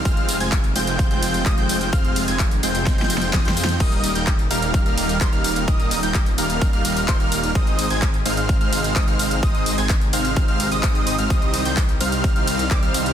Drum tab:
CC |------------------------------------------------|------------------------------------------------|x-----------------------------------------------|------------------------------------------------|
RD |------x-----------x-----------x-----------x-----|------x-----------x-----------x-----------x-----|------x-----------x-----------x-----------x-----|------x-----------x-----------x-----------x-----|
HH |x--x--o--x--x--x--o--x--x--x--o--x--x--x--o--x--|x--x--o--x--x--x--o--x--x--x--o--x--x--x--o--x--|x--x--o--x--x--x--o--x--x--x--o--x--x--x--o--x--|x--x--o--x--x--x--o--x--x--x--o--x--x--x--o--x--|
TB |x--x--x--x--x--x--x--x--x--x--x--x--x--x--x--x--|x--x--x--x--x--x--x--x--x--x--x--x--x--x--x--x--|x--x--x--x--x--x--x--x--x--x--x--x--x--x--x--x--|x--x--x--x--x--x--x--x--x--x--x--x--x--x--x--x--|
CP |------------x-----------------------x-----------|------------x-----------------------x-----------|------------x-----------------------x-----------|------------x-----------------------x-----------|
SD |------------------------------------------------|------------------------o---o---o---o---o---o---|------------------------------------------------|------------------------------------------------|
BD |o-----------o-----------o-----------o-----------|o-----------o-----------o-----------o-----------|o-----------o-----------o-----------o-----------|o-----------o-----------o-----------o-----------|

CC |------------------------------------------------|------------------------------------------------|------------------------------------------------|
RD |------x-----------x-----------x-----------x-----|------x-----------x-----------x-----------x-----|------x-----------x-----------x-----------x-----|
HH |x--x--o--x--x--x--o--x--x--x--o--x--x--x--o--x--|x--x--o--x--x--x--o--x--x--x--o--x--x--x--o--x--|x--x--o--x--x--x--o--x--x--x--o--x--x--x--o--x--|
TB |x--x--x--x--x--x--x--x--x--x--x--x--x--x--x--x--|x--x--x--x--x--x--x--x--x--x--x--x--x--x--x--x--|x--x--x--x--x--x--x--x--x--x--x--x--x--x--x--x--|
CP |------------x-----------------------x-----------|------------x-----------------------x-----------|------------x-----------------------x-----------|
SD |------------------------------------------------|------------------------------------------------|------------------------------------------------|
BD |o-----------o-----------o-----------o-----------|o-----------o-----------o-----------o-----------|o-----------o-----------o-----------o-----------|